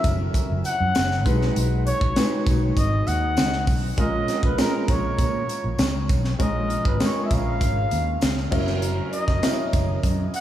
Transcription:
0.00 1.27 F#3 medium
0.00 1.27 C#4 medium
0.00 1.28 E4 medium
0.00 1.27 A4 medium
0.00 1.27 A#4 medium
0.00 tambourine medium
0.04 0.28 F#1 loud
0.04 kick loud
0.04 closed hi-hat medium
0.34 kick medium
0.34 closed hi-hat medium
0.34 tambourine soft
0.50 0.61 F#1 medium
0.64 1.22 F#5 loud
0.64 closed hi-hat medium
0.64 tambourine soft
0.80 0.92 F#2 loud
0.95 1.26 F#1 medium
0.95 snare loud
0.95 closed hi-hat medium
0.95 tambourine medium
1.11 snare soft
1.25 1.49 B1 medium
1.25 1.98 G#3 medium
1.25 1.98 D#4 medium
1.25 1.98 F#4 medium
1.25 1.98 B4 medium
1.25 kick loud
1.25 closed hi-hat medium
1.25 tambourine soft
1.42 snare soft
1.56 1.91 B1 loud
1.56 closed hi-hat medium
1.87 2.43 C#5 loud
1.87 closed hi-hat medium
1.87 tambourine soft
2.01 2.13 A#1 medium
2.01 kick medium
2.16 3.03 G#3 medium
2.16 3.03 D#4 medium
2.16 3.03 F#4 medium
2.16 3.04 B4 medium
2.16 snare loud
2.16 closed hi-hat medium
2.16 tambourine loud
2.46 2.70 B1 loud
2.46 kick loud
2.46 closed hi-hat medium
2.46 tambourine medium
2.76 3.00 G#1 medium
2.76 3.09 D#5 loud
2.76 kick medium
2.76 closed hi-hat medium
2.76 tambourine soft
3.07 3.37 D#2 medium
3.07 3.68 F#5 loud
3.07 closed hi-hat medium
3.07 tambourine soft
3.37 3.67 C#2 medium
3.37 snare loud
3.37 closed hi-hat medium
3.37 tambourine medium
3.53 snare soft
3.67 3.91 B1 medium
3.67 kick loud
3.67 open hi-hat medium
3.67 tambourine soft
3.97 4.21 A#1 loud
3.97 4.41 G#3 medium
3.97 4.41 C#4 medium
3.97 4.41 F4 medium
3.97 4.42 A#4 medium
3.97 4.41 D#5 loud
3.97 kick loud
3.97 closed hi-hat medium
3.97 tambourine soft
4.28 snare soft
4.28 closed hi-hat medium
4.43 4.55 A#1 medium
4.43 4.58 B4 medium
4.43 kick medium
4.57 5.45 G#3 medium
4.57 5.45 C#4 medium
4.57 5.45 F4 medium
4.57 5.45 A#4 medium
4.57 4.92 A#4 medium
4.57 snare loud
4.57 closed hi-hat medium
4.57 tambourine medium
4.88 5.12 A#1 medium
4.88 6.11 C#5 medium
4.88 kick loud
4.88 closed hi-hat medium
4.88 tambourine soft
5.19 5.42 A#2 loud
5.19 kick medium
5.19 closed hi-hat medium
5.19 tambourine soft
5.49 closed hi-hat medium
5.49 tambourine soft
5.64 5.76 A#1 medium
5.79 6.09 C#2 medium
5.79 snare loud
5.79 closed hi-hat medium
5.79 tambourine medium
6.09 6.33 B1 medium
6.09 kick medium
6.09 closed hi-hat medium
6.09 tambourine medium
6.25 snare soft
6.39 6.75 A#1 loud
6.39 6.83 G#3 medium
6.39 6.83 C#4 medium
6.39 6.83 F4 medium
6.39 6.83 A#4 medium
6.39 6.83 D#5 loud
6.39 kick loud
6.39 closed hi-hat medium
6.39 tambourine soft
6.70 closed hi-hat medium
6.85 6.97 G#1 medium
6.85 7.04 B4 medium
6.85 kick medium
7.00 7.87 G#3 medium
7.00 7.87 C#4 medium
7.00 7.87 F4 medium
7.00 7.88 A#4 medium
7.00 7.26 C#5 loud
7.00 snare loud
7.00 closed hi-hat medium
7.00 tambourine medium
7.25 7.35 E5 medium
7.31 7.61 A#1 loud
7.31 8.53 F5 loud
7.31 kick loud
7.31 closed hi-hat medium
7.31 tambourine medium
7.61 7.84 G#1 loud
7.61 kick medium
7.61 closed hi-hat medium
7.61 tambourine soft
7.91 8.15 D#2 medium
7.91 closed hi-hat medium
7.91 tambourine soft
8.21 8.45 C#2 medium
8.21 snare loud
8.21 closed hi-hat medium
8.21 tambourine medium
8.37 snare soft
8.51 8.99 F#1 medium
8.51 9.24 F#3 medium
8.51 9.24 C#4 medium
8.51 9.25 E4 medium
8.51 9.25 A#4 loud
8.51 kick loud
8.51 tambourine medium
8.51 crash medium
8.67 snare soft
8.82 closed hi-hat medium
8.82 tambourine soft
9.13 9.69 D#5 loud
9.13 closed hi-hat medium
9.28 9.39 F#1 medium
9.28 kick medium
9.28 snare soft
9.42 10.29 F#3 medium
9.42 10.29 C#4 medium
9.42 10.29 E4 medium
9.42 10.29 A#4 medium
9.42 snare loud
9.42 closed hi-hat medium
9.42 tambourine medium
9.73 9.97 F#1 medium
9.73 kick loud
9.73 closed hi-hat medium
9.73 tambourine medium
10.03 10.27 F#2 loud
10.03 kick loud
10.03 closed hi-hat medium
10.03 tambourine soft
10.34 10.40 F#5 loud
10.34 closed hi-hat medium
10.34 tambourine soft

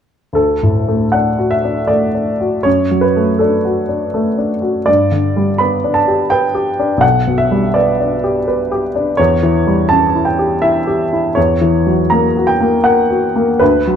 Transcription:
0.33 2.60 D2 soft
0.33 1.13 A4 medium
0.63 1.04 A2 soft
0.88 1.29 A3 soft
1.12 1.55 D4 soft
1.12 1.51 F#5 soft
1.39 1.80 F#4 soft
1.51 1.89 E5 medium
1.64 2.05 D4 soft
1.87 2.31 A3 soft
1.87 2.65 D5 medium
2.15 2.56 D4 soft
2.40 2.66 F#4 soft
2.63 4.83 F#2 soft
2.63 3.02 C#5 medium
2.91 3.31 F#3 soft
3.01 3.39 B4 medium
3.16 3.56 A3 soft
3.39 3.80 D4 soft
3.39 4.50 A4 soft
3.65 4.04 F#4 soft
3.89 4.28 D4 soft
4.14 4.53 A3 soft
4.38 4.78 D4 soft
4.62 4.87 F#4 soft
4.86 6.99 G2 soft
4.86 5.60 D5 medium
5.12 5.51 D3 soft
5.36 5.75 G3 soft
5.58 5.98 B3 soft
5.58 5.95 B5 medium
5.84 6.22 D4 soft
5.94 6.30 A5 medium
6.08 6.45 G4 soft
6.30 6.69 B4 soft
6.30 7.02 G5 medium
6.54 6.93 G4 soft
6.79 7.03 D4 soft
6.97 9.12 B1 soft
6.97 7.38 F#5 medium
7.27 7.66 B2 soft
7.38 7.75 E5 medium
7.51 7.89 G3 soft
7.74 8.13 B3 soft
7.74 8.82 D5 medium
8.01 8.38 D4 soft
8.24 8.62 G4 soft
8.48 8.86 B4 soft
8.72 9.10 G4 soft
8.96 9.19 D4 soft
9.17 11.33 E2 soft
9.17 9.90 C#5 medium
9.43 9.81 E3 soft
9.67 10.05 G3 soft
9.89 10.29 C#4 soft
9.89 10.26 A5 medium
10.16 10.54 E4 soft
10.25 10.62 G5 soft
10.39 10.78 G4 soft
10.62 11.02 E4 soft
10.62 11.36 E5 medium
10.87 11.27 G4 soft
11.13 11.37 E4 soft
11.35 13.56 E2 soft
11.35 12.10 C#5 medium
11.61 12.01 E3 soft
11.87 12.26 F#3 soft
12.10 12.51 A#3 soft
12.10 12.47 A#5 medium
12.37 12.75 F#4 soft
12.47 12.84 G5 medium
12.60 13.00 A#3 soft
12.84 13.25 A#4 soft
12.84 13.60 F#5 medium
13.11 13.51 F#4 soft
13.36 13.61 A#3 soft
13.59 13.96 D2 soft
13.59 13.96 B4 medium
13.87 13.96 F#3 soft

